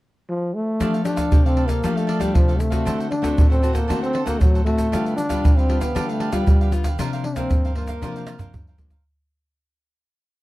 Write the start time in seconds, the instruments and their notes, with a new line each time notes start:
0.29 trombone F3
0.54 trombone A3
0.80 nylon-string guitar F3 A3 D4 G4, cavaquinho D4 A4 D5 F5, pandeiro, shaker, surdo
0.94 cavaquinho A4 D5 F5, pandeiro, shaker
1.05 nylon-string guitar A3 D4 G4, trombone D4, muted cavaquinho stroke, pandeiro, shaker
1.16 cavaquinho A4 D5 F5, pandeiro, shaker, surdo
1.31 nylon-string guitar C3 A3 D4 G4, pandeiro, shaker, surdo
1.46 trombone C4, cavaquinho A4 D5 F5, pandeiro, shaker
1.56 cavaquinho D4 A4 D5 F5, pandeiro
1.68 trombone A#3, cavaquinho A4 D5 F5, pandeiro, shaker, surdo
1.84 nylon-string guitar F3 A3 D4 G4, cavaquinho D4 A4 D5 F5, pandeiro, shaker, surdo
1.97 trombone A3, cavaquinho A4 D5 F5, pandeiro, shaker
2.07 cavaquinho D4 A4 D5 F5, pandeiro
2.20 trombone G3, nylon-string guitar A3 D4 G4, cavaquinho A4 D5 F5, pandeiro, shaker, surdo
2.34 nylon-string guitar C3, trombone F3, pandeiro, shaker, surdo
2.48 cavaquinho A4 D5 F5, pandeiro, shaker
2.59 trombone A3, muted cavaquinho stroke, pandeiro, shaker
2.70 nylon-string guitar A3 C4 F#4, cavaquinho A4 D5 F5, pandeiro, shaker, surdo
2.85 nylon-string guitar D3, cavaquinho D4 A4 C5 F#5, pandeiro, shaker, surdo
2.99 cavaquinho A4 C5 F#5, pandeiro, shaker
3.10 trombone D4, muted cavaquinho stroke, pandeiro
3.22 nylon-string guitar A3 C4 F#4, cavaquinho A4 C5 F#5, pandeiro, shaker, surdo
3.38 nylon-string guitar A2, pandeiro, shaker, surdo
3.50 trombone C4, cavaquinho A4 C5 F#5, pandeiro, shaker
3.62 nylon-string guitar A3 C4 F#4, cavaquinho D4 A4 C5 F#5, pandeiro, shaker
3.73 trombone A#3, cavaquinho A4 C5 F#5, pandeiro, shaker, surdo
3.88 nylon-string guitar D3 A3 C4 F#4, cavaquinho D4 A4 C5 F#5, pandeiro, shaker, surdo
4.02 trombone C4, cavaquinho A4 C5 F#5, pandeiro, shaker
4.13 cavaquinho D4 A4 C5 F#5, pandeiro
4.26 nylon-string guitar A3 C4 F#4, trombone A#3, cavaquinho A4 C5 F#5, pandeiro, shaker, surdo
4.41 nylon-string guitar A2, trombone F#3, pandeiro, shaker, surdo
4.54 cavaquinho A4 C5 F#5, pandeiro, shaker
4.65 trombone A3, nylon-string guitar A3 C4 F#4, muted cavaquinho stroke, pandeiro
4.77 cavaquinho A4 C5 F#5, pandeiro, shaker, surdo
4.92 nylon-string guitar D3 G3 B3 F4, cavaquinho D4 G4 B4 F5, pandeiro, shaker, surdo
5.05 cavaquinho F5, pandeiro, shaker
5.17 trombone D4, muted cavaquinho stroke, pandeiro, shaker
5.29 nylon-string guitar G3 B3 F4, cavaquinho G4 B4 F5, pandeiro, shaker, surdo
5.44 nylon-string guitar D3, pandeiro, shaker, surdo
5.57 trombone C4, cavaquinho G4 B4 F5, pandeiro, shaker
5.69 nylon-string guitar G3 B3 F4, cavaquinho D4 G4 B4 F5, pandeiro
5.80 trombone B3, cavaquinho G4 B4 F5, pandeiro, shaker, surdo
5.95 nylon-string guitar D3 G3 B3 F4, cavaquinho D4 G4 B4 F5, pandeiro, shaker, surdo
6.09 trombone A3, cavaquinho G4 B4 F5, pandeiro, shaker
6.20 cavaquinho D4 G4 B4 F5, pandeiro
6.32 nylon-string guitar G3 B3 F4, trombone G3, cavaquinho G4 B4 F5, pandeiro, shaker, surdo
6.47 nylon-string guitar D3, trombone G3, pandeiro, shaker, surdo
6.61 cavaquinho G4 B4 F5, pandeiro, shaker
6.71 nylon-string guitar G3 B3 F4, muted cavaquinho stroke, pandeiro, shaker
6.84 cavaquinho G4 B4 F5, pandeiro, shaker, surdo
6.99 nylon-string guitar C3 F3 A#3 D4, cavaquinho F4 A#4 C5 F5, pandeiro, shaker, surdo
7.13 cavaquinho A#4 C5 F5, pandeiro, shaker
7.24 trombone D4, muted cavaquinho stroke, pandeiro
7.36 nylon-string guitar F3 A#3 D4, trombone C4, cavaquinho A#4 C5 F5, pandeiro, shaker, surdo
7.50 nylon-string guitar G2, pandeiro, shaker, surdo
7.65 cavaquinho A#4 C5 F5, pandeiro, shaker
7.75 nylon-string guitar F3 A#3 D4, trombone A#3, cavaquinho F4 A#4 C5 F5, pandeiro
7.87 cavaquinho A#4 C5 F5, pandeiro, shaker, surdo
8.02 nylon-string guitar C3 F3 A#3 D4, cavaquinho F4 A#4 C5 F5, pandeiro, shaker, surdo
8.16 cavaquinho A#4 C5 F5, pandeiro, shaker
8.27 cavaquinho F4 A#4 C5 F5, pandeiro, tamborim, shaker
8.38 nylon-string guitar F3 A#3 D4, cavaquinho A#4 C5 F5, surdo, pandeiro, shaker
8.53 nylon-string guitar G2, surdo, pandeiro, shaker
8.67 cavaquinho A#4 C5 F5, pandeiro, shaker
8.78 nylon-string guitar F3 A#3 D4, muted cavaquinho stroke, pandeiro, shaker, surdo
8.90 cavaquinho A#4 C5 F5, pandeiro, shaker, surdo